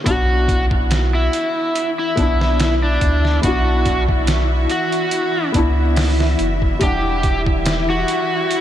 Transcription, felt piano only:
0.04 B3 D4
0.10 F#4
2.16 B3 D4
2.22 E4
3.42 B3 D4
3.47 F#4
5.52 B3 D4
5.58 E4
6.79 G3 D4
6.85 F#5

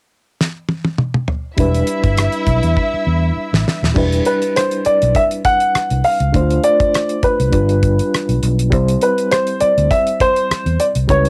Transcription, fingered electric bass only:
1.58 E1
2.04 G1
2.47 B1
2.63 E2
2.94 muted fingered electric bass stroke
3.07 E2
3.37 muted fingered electric bass stroke
3.53 A1
3.83 D#1
3.96 E1
4.86 muted fingered electric bass stroke
5.03 B1
5.75 muted fingered electric bass stroke
5.91 C2
6.20 C#2
6.34 D2
7.23 muted fingered electric bass stroke
7.40 C2
7.54 G1
8.29 B1
8.43 B1
8.73 C2
9.62 muted fingered electric bass stroke
9.78 D2
10.51 muted fingered electric bass stroke
10.66 E2
10.96 C2
11.10 C#2

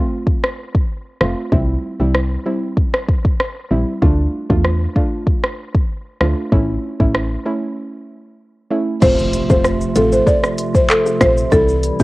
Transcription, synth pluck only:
1.21 A3 C4 F4
1.52 G3 C4 E4
2.00 G3 C4 E4
2.45 G3 C4 E4
3.71 G3 C4 E4
4.02 A3 D4 F4
4.50 A3 D4 F4
4.96 A3 D4 F4
6.21 A3 D4 F4
6.52 A3 C#4 E4
7.00 A3 C#4 E4
7.46 A3 C#4 E4
8.71 A3 C#4 E4
9.02 A3 C4 F4
9.50 A3 C4 F4
9.96 A3 C4 F4
11.21 A3 C4 F4
11.52 G3 C4 E4
12.00 G3 C4

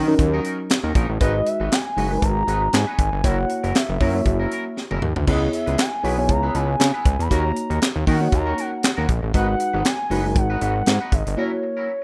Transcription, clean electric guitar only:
Already playing: F#3
0.08 muted clean electric guitar stroke
0.19 muted clean electric guitar stroke
0.33 F#3 C#4 D#4 A#4
0.44 F#3 C#4 D#4 A#4
0.59 muted clean electric guitar stroke
0.70 muted clean electric guitar stroke
0.84 F#3 C#4 D#4 A#4
0.95 F#3 C#4 D#4 A#4
1.09 muted clean electric guitar stroke
1.20 G#3 D#4 F#4 B4
1.35 muted clean electric guitar stroke
1.46 muted clean electric guitar stroke
1.60 G#3 D#4 F#4 B4
1.85 muted clean electric guitar stroke
1.97 G#3 D#4 F#4 B4
2.11 muted clean electric guitar stroke
2.22 muted clean electric guitar stroke
2.37 muted clean electric guitar stroke
2.47 G#3 D#4 F#4 B4
2.62 muted clean electric guitar stroke
2.73 muted clean electric guitar stroke
2.87 G#3 D#4 F#4 B4
2.98 muted clean electric guitar stroke
3.13 muted clean electric guitar stroke
3.24 F#3 C#4 E4 A#4
3.38 muted clean electric guitar stroke
3.49 muted clean electric guitar stroke
3.63 F#3 C#4 E4 A#4
3.89 muted clean electric guitar stroke
4.00 F#3 C#4 E4 A#4
4.15 muted clean electric guitar stroke
4.26 muted clean electric guitar stroke
4.40 F#3 C#4 E4 A#4
4.51 F#3 C#4 E4 A#4
4.66 muted clean electric guitar stroke
4.77 muted clean electric guitar stroke
4.91 F#3 C#4 E4 A#4
5.02 muted clean electric guitar stroke
5.16 muted clean electric guitar stroke
5.27 B3 E4 G#4 B4
5.42 muted clean electric guitar stroke
5.53 muted clean electric guitar stroke
5.66 B3 E4 G#4 B4
5.92 muted clean electric guitar stroke
6.04 B3 E4 G#4 B4
6.18 muted clean electric guitar stroke
6.29 muted clean electric guitar stroke
6.43 B3 E4 G#4 B4
6.54 B3 E4 G#4 B4
6.69 muted clean electric guitar stroke
6.94 B3 E4 G#4 B4
7.05 muted clean electric guitar stroke
7.20 muted clean electric guitar stroke
7.30 A#3 C#4 F#4 A#4
7.45 muted clean electric guitar stroke
7.56 muted clean electric guitar stroke
7.70 A#3 C#4 F#4 A#4
7.95 muted clean electric guitar stroke
8.06 A#3 C#4 F#4 A#4
8.21 muted clean electric guitar stroke
8.32 muted clean electric guitar stroke
8.46 A#3 C#4 F#4 A#4
8.58 A#3 C#4 F#4 A#4
8.72 muted clean electric guitar stroke
8.83 muted clean electric guitar stroke
8.97 A#3 C#4 F#4 A#4
9.08 muted clean electric guitar stroke
9.23 muted clean electric guitar stroke
9.34 G#3 D#4 F#4 B4
9.48 muted clean electric guitar stroke
9.59 muted clean electric guitar stroke
9.73 G#3 D#4 F#4 B4
9.99 muted clean electric guitar stroke
10.10 G#3 D#4 F#4 B4
10.24 muted clean electric guitar stroke
10.35 muted clean electric guitar stroke
10.50 G#3 D#4 F#4 B4
10.61 G#3 D#4 F#4 B4
10.75 muted clean electric guitar stroke
10.86 muted clean electric guitar stroke
11.00 G#3 D#4 F#4 B4
11.12 muted clean electric guitar stroke
11.26 muted clean electric guitar stroke
11.37 F#3 C#4 E4 A#4
11.52 muted clean electric guitar stroke
11.63 muted clean electric guitar stroke
11.77 F#3 C#4 E4 A#4

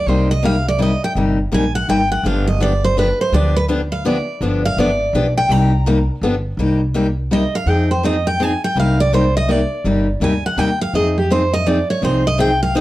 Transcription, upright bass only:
0.07 C2
1.15 G1
1.52 A#1
1.88 G#1
2.23 G1
3.32 D2
4.41 G1
4.77 G#1
5.13 B1
5.49 C2
6.21 G1
6.57 C2
7.66 F2
8.76 C2
9.84 G1
10.20 D2
10.57 D#2
10.93 F2
12.02 C2

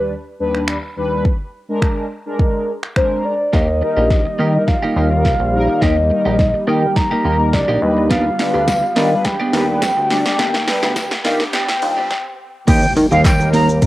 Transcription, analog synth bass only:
3.53 D#2
3.97 A#1
4.39 D#3
4.96 D#2
5.25 C2
5.40 A#1
5.82 D#2
6.26 A#1
6.68 D#3
7.25 D#2
7.54 C2
7.69 A#1
7.82 D#2
8.54 D2
8.96 D#3
9.53 D#2
9.82 F2
9.97 D2
10.39 D#2
10.83 D2
11.25 D#3
11.82 D#2
12.68 D#2
12.97 D#3
13.12 D#2

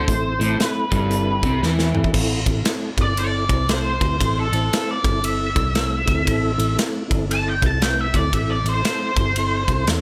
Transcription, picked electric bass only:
0.08 A1
0.40 A1
0.92 G1
1.43 C2
1.62 E2
2.14 A1
2.46 A1
2.65 muted picked electric bass stroke
2.97 G1
3.49 C2
4.01 D2
4.20 A1
4.53 A1
5.04 G1
5.56 C2
6.07 D2
6.27 A1
6.58 A1
7.11 G1
7.62 C2
8.14 D2
8.33 A1
8.64 A1
8.84 muted picked electric bass stroke
9.16 G1
9.68 C2
9.88 E2

